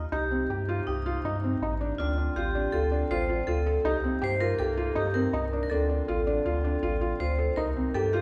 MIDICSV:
0, 0, Header, 1, 5, 480
1, 0, Start_track
1, 0, Tempo, 372671
1, 156, Time_signature, 5, 2, 24, 8
1, 10581, End_track
2, 0, Start_track
2, 0, Title_t, "Vibraphone"
2, 0, Program_c, 0, 11
2, 0, Note_on_c, 0, 63, 50
2, 147, Note_off_c, 0, 63, 0
2, 159, Note_on_c, 0, 67, 92
2, 1120, Note_on_c, 0, 63, 73
2, 1151, Note_off_c, 0, 67, 0
2, 2556, Note_on_c, 0, 65, 87
2, 2607, Note_off_c, 0, 63, 0
2, 3043, Note_on_c, 0, 67, 90
2, 3055, Note_off_c, 0, 65, 0
2, 3508, Note_on_c, 0, 69, 92
2, 3539, Note_off_c, 0, 67, 0
2, 4004, Note_on_c, 0, 72, 92
2, 4011, Note_off_c, 0, 69, 0
2, 4471, Note_on_c, 0, 69, 92
2, 4499, Note_off_c, 0, 72, 0
2, 4959, Note_on_c, 0, 67, 82
2, 4973, Note_off_c, 0, 69, 0
2, 5456, Note_off_c, 0, 67, 0
2, 5458, Note_on_c, 0, 72, 107
2, 5674, Note_on_c, 0, 70, 101
2, 5698, Note_off_c, 0, 72, 0
2, 5907, Note_on_c, 0, 69, 92
2, 5926, Note_off_c, 0, 70, 0
2, 6389, Note_on_c, 0, 67, 88
2, 6410, Note_off_c, 0, 69, 0
2, 6623, Note_on_c, 0, 70, 102
2, 6644, Note_off_c, 0, 67, 0
2, 7235, Note_off_c, 0, 70, 0
2, 7250, Note_on_c, 0, 70, 81
2, 7339, Note_on_c, 0, 69, 85
2, 7351, Note_off_c, 0, 70, 0
2, 9214, Note_off_c, 0, 69, 0
2, 9275, Note_on_c, 0, 72, 95
2, 9740, Note_on_c, 0, 70, 86
2, 9769, Note_off_c, 0, 72, 0
2, 10232, Note_on_c, 0, 69, 91
2, 10241, Note_off_c, 0, 70, 0
2, 10455, Note_off_c, 0, 69, 0
2, 10473, Note_on_c, 0, 67, 104
2, 10581, Note_off_c, 0, 67, 0
2, 10581, End_track
3, 0, Start_track
3, 0, Title_t, "Felt piano"
3, 0, Program_c, 1, 0
3, 157, Note_on_c, 1, 63, 81
3, 288, Note_off_c, 1, 63, 0
3, 399, Note_on_c, 1, 60, 68
3, 530, Note_off_c, 1, 60, 0
3, 644, Note_on_c, 1, 67, 74
3, 773, Note_off_c, 1, 67, 0
3, 884, Note_on_c, 1, 65, 77
3, 1014, Note_off_c, 1, 65, 0
3, 1127, Note_on_c, 1, 67, 66
3, 1256, Note_off_c, 1, 67, 0
3, 1364, Note_on_c, 1, 65, 73
3, 1494, Note_off_c, 1, 65, 0
3, 1609, Note_on_c, 1, 63, 83
3, 1738, Note_off_c, 1, 63, 0
3, 1851, Note_on_c, 1, 60, 72
3, 1980, Note_off_c, 1, 60, 0
3, 2093, Note_on_c, 1, 63, 72
3, 2221, Note_off_c, 1, 63, 0
3, 2328, Note_on_c, 1, 62, 75
3, 2458, Note_off_c, 1, 62, 0
3, 2571, Note_on_c, 1, 62, 91
3, 2699, Note_off_c, 1, 62, 0
3, 2803, Note_on_c, 1, 62, 72
3, 2934, Note_off_c, 1, 62, 0
3, 3047, Note_on_c, 1, 65, 81
3, 3177, Note_off_c, 1, 65, 0
3, 3284, Note_on_c, 1, 62, 82
3, 3415, Note_off_c, 1, 62, 0
3, 3518, Note_on_c, 1, 65, 71
3, 3651, Note_off_c, 1, 65, 0
3, 3757, Note_on_c, 1, 62, 72
3, 3890, Note_off_c, 1, 62, 0
3, 4002, Note_on_c, 1, 65, 90
3, 4134, Note_off_c, 1, 65, 0
3, 4243, Note_on_c, 1, 65, 69
3, 4374, Note_off_c, 1, 65, 0
3, 4479, Note_on_c, 1, 65, 75
3, 4611, Note_off_c, 1, 65, 0
3, 4718, Note_on_c, 1, 69, 69
3, 4850, Note_off_c, 1, 69, 0
3, 4958, Note_on_c, 1, 63, 92
3, 5090, Note_off_c, 1, 63, 0
3, 5200, Note_on_c, 1, 60, 75
3, 5332, Note_off_c, 1, 60, 0
3, 5430, Note_on_c, 1, 67, 84
3, 5564, Note_off_c, 1, 67, 0
3, 5676, Note_on_c, 1, 65, 80
3, 5808, Note_off_c, 1, 65, 0
3, 5916, Note_on_c, 1, 67, 73
3, 6049, Note_off_c, 1, 67, 0
3, 6148, Note_on_c, 1, 65, 78
3, 6283, Note_off_c, 1, 65, 0
3, 6381, Note_on_c, 1, 63, 86
3, 6518, Note_off_c, 1, 63, 0
3, 6630, Note_on_c, 1, 60, 77
3, 6764, Note_off_c, 1, 60, 0
3, 6870, Note_on_c, 1, 63, 79
3, 7004, Note_off_c, 1, 63, 0
3, 7122, Note_on_c, 1, 62, 72
3, 7253, Note_off_c, 1, 62, 0
3, 7356, Note_on_c, 1, 62, 90
3, 7488, Note_off_c, 1, 62, 0
3, 7591, Note_on_c, 1, 62, 71
3, 7724, Note_off_c, 1, 62, 0
3, 7835, Note_on_c, 1, 65, 82
3, 7967, Note_off_c, 1, 65, 0
3, 8074, Note_on_c, 1, 62, 85
3, 8206, Note_off_c, 1, 62, 0
3, 8315, Note_on_c, 1, 65, 75
3, 8446, Note_off_c, 1, 65, 0
3, 8557, Note_on_c, 1, 62, 74
3, 8687, Note_off_c, 1, 62, 0
3, 8793, Note_on_c, 1, 65, 79
3, 8925, Note_off_c, 1, 65, 0
3, 9032, Note_on_c, 1, 65, 76
3, 9163, Note_off_c, 1, 65, 0
3, 9270, Note_on_c, 1, 65, 74
3, 9402, Note_off_c, 1, 65, 0
3, 9511, Note_on_c, 1, 69, 66
3, 9642, Note_off_c, 1, 69, 0
3, 9753, Note_on_c, 1, 63, 85
3, 9884, Note_off_c, 1, 63, 0
3, 9999, Note_on_c, 1, 60, 66
3, 10128, Note_off_c, 1, 60, 0
3, 10237, Note_on_c, 1, 67, 82
3, 10366, Note_off_c, 1, 67, 0
3, 10480, Note_on_c, 1, 65, 78
3, 10581, Note_off_c, 1, 65, 0
3, 10581, End_track
4, 0, Start_track
4, 0, Title_t, "Woodwind section"
4, 0, Program_c, 2, 71
4, 160, Note_on_c, 2, 48, 63
4, 160, Note_on_c, 2, 63, 78
4, 161, Note_on_c, 2, 58, 63
4, 2542, Note_off_c, 2, 48, 0
4, 2542, Note_off_c, 2, 58, 0
4, 2542, Note_off_c, 2, 63, 0
4, 2570, Note_on_c, 2, 50, 67
4, 2576, Note_on_c, 2, 60, 67
4, 2576, Note_on_c, 2, 65, 77
4, 4944, Note_off_c, 2, 50, 0
4, 4947, Note_off_c, 2, 60, 0
4, 4947, Note_off_c, 2, 65, 0
4, 4970, Note_on_c, 2, 58, 67
4, 4973, Note_on_c, 2, 48, 68
4, 4977, Note_on_c, 2, 63, 76
4, 7341, Note_off_c, 2, 58, 0
4, 7343, Note_off_c, 2, 48, 0
4, 7345, Note_off_c, 2, 63, 0
4, 7374, Note_on_c, 2, 65, 84
4, 7384, Note_on_c, 2, 50, 73
4, 7386, Note_on_c, 2, 60, 65
4, 9738, Note_off_c, 2, 65, 0
4, 9743, Note_off_c, 2, 50, 0
4, 9744, Note_off_c, 2, 60, 0
4, 9751, Note_on_c, 2, 58, 68
4, 9753, Note_on_c, 2, 48, 72
4, 9754, Note_on_c, 2, 63, 78
4, 10581, Note_off_c, 2, 48, 0
4, 10581, Note_off_c, 2, 58, 0
4, 10581, Note_off_c, 2, 63, 0
4, 10581, End_track
5, 0, Start_track
5, 0, Title_t, "Sub bass"
5, 0, Program_c, 3, 38
5, 160, Note_on_c, 3, 36, 93
5, 565, Note_off_c, 3, 36, 0
5, 641, Note_on_c, 3, 43, 89
5, 1046, Note_off_c, 3, 43, 0
5, 1133, Note_on_c, 3, 36, 98
5, 1534, Note_off_c, 3, 36, 0
5, 1601, Note_on_c, 3, 43, 106
5, 2007, Note_off_c, 3, 43, 0
5, 2087, Note_on_c, 3, 33, 99
5, 2491, Note_off_c, 3, 33, 0
5, 2567, Note_on_c, 3, 38, 99
5, 2971, Note_off_c, 3, 38, 0
5, 3042, Note_on_c, 3, 33, 100
5, 3448, Note_off_c, 3, 33, 0
5, 3523, Note_on_c, 3, 38, 91
5, 3929, Note_off_c, 3, 38, 0
5, 3999, Note_on_c, 3, 33, 93
5, 4407, Note_off_c, 3, 33, 0
5, 4477, Note_on_c, 3, 38, 100
5, 4886, Note_off_c, 3, 38, 0
5, 4951, Note_on_c, 3, 36, 88
5, 5362, Note_off_c, 3, 36, 0
5, 5445, Note_on_c, 3, 43, 101
5, 5849, Note_off_c, 3, 43, 0
5, 5919, Note_on_c, 3, 36, 90
5, 6326, Note_off_c, 3, 36, 0
5, 6397, Note_on_c, 3, 43, 100
5, 6804, Note_off_c, 3, 43, 0
5, 6870, Note_on_c, 3, 36, 103
5, 7280, Note_off_c, 3, 36, 0
5, 7355, Note_on_c, 3, 38, 90
5, 7762, Note_off_c, 3, 38, 0
5, 7842, Note_on_c, 3, 33, 99
5, 8246, Note_off_c, 3, 33, 0
5, 8318, Note_on_c, 3, 38, 87
5, 8722, Note_off_c, 3, 38, 0
5, 8793, Note_on_c, 3, 33, 98
5, 9199, Note_off_c, 3, 33, 0
5, 9274, Note_on_c, 3, 38, 103
5, 9679, Note_off_c, 3, 38, 0
5, 9757, Note_on_c, 3, 36, 102
5, 10160, Note_off_c, 3, 36, 0
5, 10233, Note_on_c, 3, 43, 102
5, 10581, Note_off_c, 3, 43, 0
5, 10581, End_track
0, 0, End_of_file